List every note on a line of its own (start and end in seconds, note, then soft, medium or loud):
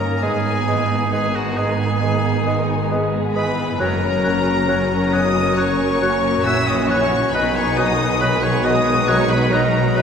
0.00 0.23 G1 soft
0.00 0.22 G2 soft
0.00 0.26 G2 soft
0.00 0.21 D#3 soft
0.00 0.20 A#3 soft
0.00 0.20 C#4 soft
0.00 0.22 C#4 soft
0.00 0.26 C#4 soft
0.00 0.67 D#4 soft
0.00 0.24 A#4 medium
0.00 0.26 A#4 soft
0.00 0.27 C#5 soft
0.00 1.34 D#5 soft
0.00 0.14 A#5 medium
0.15 0.22 A#5 soft
0.22 3.76 G#1 soft
0.22 3.83 G#2 soft
0.22 3.76 G#2 soft
0.22 0.67 D#3 soft
0.22 1.11 G#3 soft
0.22 0.39 G#3 soft
0.22 1.11 B3 soft
0.22 3.80 B3 soft
0.22 1.13 B3 soft
0.22 1.12 D#4 soft
0.22 1.11 G#4 medium
0.22 0.39 B4 soft
0.22 1.11 G#5 medium
0.22 0.33 D#6 soft
0.46 2.24 B3 soft
0.67 1.12 E3 soft
0.67 0.84 G#3 soft
0.67 2.46 D#4 soft
0.67 0.84 B4 soft
0.67 0.77 D#6 soft
0.91 1.79 G#4 soft
1.11 2.00 D#3 soft
1.11 3.64 G#3 medium
1.11 1.28 G#3 soft
1.11 3.64 B3 medium
1.11 2.01 D#4 soft
1.11 1.37 G#4 medium
1.11 1.28 B4 soft
1.11 1.57 B4 soft
1.11 1.34 G#5 medium
1.11 1.21 D#6 soft
1.34 1.59 F#4 soft
1.34 3.12 D#5 soft
1.34 1.57 F#5 medium
1.56 1.74 G#3 soft
1.56 2.91 G#4 medium
1.56 1.73 B4 soft
1.56 2.91 B4 soft
1.56 2.91 G#5 medium
1.56 1.66 D#6 soft
1.80 2.68 G#4 soft
2.01 2.89 D#3 soft
2.01 3.84 D#3 soft
2.01 2.18 G#3 soft
2.01 2.90 D#4 soft
2.01 2.90 G#4 soft
2.01 2.18 B4 soft
2.01 2.11 D#6 soft
2.25 3.84 B3 soft
2.46 2.63 G#3 soft
2.46 3.84 D#4 soft
2.46 2.62 B4 soft
2.46 2.56 D#6 soft
2.69 3.58 G#4 soft
2.90 3.08 G#3 soft
2.90 3.36 G#3 medium
2.90 3.80 B3 medium
2.90 3.78 G#4 medium
2.90 3.07 B4 soft
2.90 3.35 B4 soft
2.90 3.00 D#6 soft
3.14 3.84 D#5 soft
3.35 3.81 E3 soft
3.35 3.52 G#3 soft
3.35 3.52 B4 soft
3.35 3.84 B4 soft
3.35 3.77 B4 medium
3.35 3.77 B5 medium
3.35 3.46 D#6 soft
3.59 3.84 G#4 soft
3.79 6.42 F#1 medium
3.79 6.42 F#2 medium
3.79 7.38 F#2 medium
3.79 3.96 F#3 soft
3.79 5.57 F#3 medium
3.79 7.31 F#3 medium
3.79 4.24 A#3 soft
3.79 7.31 C#4 medium
3.79 4.69 C#4 soft
3.79 5.14 A#4 medium
3.79 4.69 A#4 medium
3.79 3.96 C#5 medium
3.79 5.13 A#5 medium
3.79 3.89 F#6 soft
4.04 5.80 C#4 soft
4.23 4.39 F#3 soft
4.23 4.68 A#3 soft
4.23 4.68 F#4 soft
4.23 4.40 C#5 soft
4.23 4.34 F#6 soft
4.47 5.13 C#5 soft
4.68 4.84 F#3 soft
4.68 5.12 C#4 medium
4.68 7.31 C#4 medium
4.68 5.35 F#4 soft
4.68 6.43 A#4 medium
4.68 4.84 C#5 soft
4.68 4.79 F#6 soft
4.91 6.68 F#5 soft
5.13 5.29 F#3 soft
5.13 5.58 B3 medium
5.13 5.29 C#5 medium
5.13 6.24 C#5 soft
5.13 5.59 D#5 medium
5.13 5.57 D#6 medium
5.13 5.23 F#6 soft
5.36 6.02 F#4 soft
5.57 7.38 C#3 soft
5.57 5.73 F#3 soft
5.57 6.44 F#3 medium
5.57 6.02 A#3 medium
5.57 6.47 C#5 medium
5.57 5.74 C#5 soft
5.57 6.46 C#6 medium
5.57 5.67 F#6 medium
5.81 7.38 C#4 soft
6.02 6.18 F#3 soft
6.02 6.46 A#3 medium
6.02 6.46 F#4 soft
6.02 6.18 C#5 medium
6.02 6.12 F#6 medium
6.25 6.90 C#5 medium
6.45 7.34 A#1 medium
6.45 7.34 A#2 medium
6.45 7.34 E3 medium
6.45 6.62 F#3 medium
6.45 7.34 C#4 medium
6.45 7.34 F#4 medium
6.45 6.63 C#5 medium
6.45 6.70 E5 medium
6.45 6.67 E6 medium
6.45 6.56 F#6 medium
6.67 6.92 D#5 medium
6.67 8.43 F#5 soft
6.67 6.89 D#6 medium
6.89 7.06 F#3 soft
6.89 7.33 C#5 medium
6.89 7.07 C#5 medium
6.89 7.38 C#5 soft
6.89 7.32 C#6 medium
6.89 7.00 F#6 medium
7.13 7.78 F#4 soft
7.33 10.02 B1 medium
7.33 10.02 B2 medium
7.33 9.96 D#3 medium
7.33 10.02 F#3 medium
7.33 7.50 F#3 medium
7.33 8.22 B3 soft
7.33 8.21 D#4 medium
7.33 10.02 D#4 medium
7.33 9.05 G#4 medium
7.33 7.57 B4 medium
7.33 7.51 D#5 medium
7.33 7.56 B5 medium
7.33 7.44 F#6 medium
7.55 9.30 B3 soft
7.55 7.79 C#5 medium
7.55 7.78 C#6 medium
7.77 7.94 F#3 soft
7.77 8.20 D#5 medium
7.77 7.95 D#5 medium
7.77 8.21 D#6 medium
7.77 7.87 F#6 soft
8.01 8.87 D#5 soft
8.21 8.37 F#3 medium
8.21 9.94 G#3 medium
8.21 9.07 B3 medium
8.21 8.45 B4 medium
8.21 8.65 B4 soft
8.21 8.39 D#5 medium
8.21 8.43 B5 medium
8.21 8.31 F#6 medium
8.43 8.66 C#5 medium
8.43 10.02 F#5 soft
8.43 8.65 C#6 medium
8.64 8.80 F#3 medium
8.64 9.96 B4 medium
8.64 9.09 D#5 medium
8.64 8.82 D#5 medium
8.64 9.09 D#6 medium
8.64 8.74 F#6 medium
8.88 9.73 D#5 medium
9.07 9.24 F#3 medium
9.07 10.02 F#3 medium
9.07 9.94 D#4 medium
9.07 9.94 F#4 medium
9.07 9.31 C#5 medium
9.07 9.26 D#5 medium
9.07 9.30 C#6 medium
9.07 9.17 F#6 medium
9.30 10.02 B3 soft
9.30 9.53 B4 medium
9.30 9.52 B5 medium
9.51 9.67 F#3 medium
9.51 10.02 F#4 soft
9.51 9.97 A#4 medium
9.51 9.69 D#5 medium
9.51 9.96 A#5 medium
9.51 9.62 F#6 medium
9.74 10.02 D#5 medium
9.95 10.02 F#3 medium
9.95 10.02 G#3 medium
9.95 10.02 D#4 medium
9.95 10.02 F#4 medium
9.95 10.02 B4 medium
9.95 10.02 D#5 medium
9.95 10.02 B5 medium
9.95 10.02 F#6 medium